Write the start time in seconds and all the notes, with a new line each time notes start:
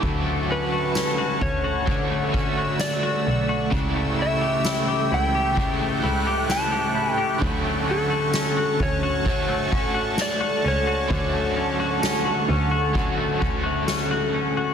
Already playing: A3 E4 G4 A4 C#6
0.00 D2 D3 F#3 F#5 A5, kick
0.05 A3 C#4 F#4
0.26 A3
0.49 C#4 B4, ride
0.72 F#4
0.95 C#4, snare, tambourine
1.18 F#4
1.40 D2 C#4 C#5, kick, ride
1.64 F#4
1.86 D3 F#3 A3 C#4 E6, kick, ride
1.91 F#4
2.11 A3
2.32 C#4 F#4, kick
2.38 A3
2.57 F#4
2.79 D5, snare, tambourine
3.03 F#4
3.26 B1, ride
3.49 F#4
3.70 C#2 C#3 E3 G5 C#6 E6, kick
3.75 A3 E4 G4
3.96 A3
4.19 E4 E5, ride
4.41 G4
4.65 E4, snare, ride, tambourine
4.88 G4
5.11 C#2 E4 G5, ride
5.35 G4
5.55 C#3 E3 A3 E4 F#6, kick
5.61 G4
5.81 A3
6.01 C#2 E4 G4, ride
6.06 A3
6.27 G4
6.49 E4 A5, snare, tambourine
6.72 G4
6.95 E4, ride
7.13 G5
7.18 G4
7.39 D2 D3 F#3 A4 F#5 A5, kick
7.44 A3 C#4 F#4
7.64 A3
7.87 C#4 A4, ride
8.10 F#4
8.34 C#4, snare, ride, tambourine
8.57 F#4
8.79 D2 C#4 C#5, kick, ride
9.03 F#4
9.25 F#3 A3 C#4, kick, ride
9.30 F#4
9.49 A3
9.71 C#4 F#4, kick, ride
9.77 A3
9.94 F#4
10.18 D5, snare, tambourine
10.41 F#4
10.64 C#2 C#4, ride
10.68 C#5
10.87 F#4
11.09 D2 D3 F#3, kick, ride
11.13 A3 C#4 F#4
11.33 A3
11.56 C#4, ride
11.80 F#4
12.02 C#4, snare, tambourine
12.25 F#4
12.49 D2 C#4, ride
12.71 F#4
12.93 D3 F#3 A3 C#4, kick, ride
12.98 F#4
13.18 A3
13.40 D2 C#4 F#4, kick, ride
13.45 A3
13.63 F#4
13.88 C#4, snare, ride, tambourine
14.11 F#4
14.34 C#4, ride
14.57 F#4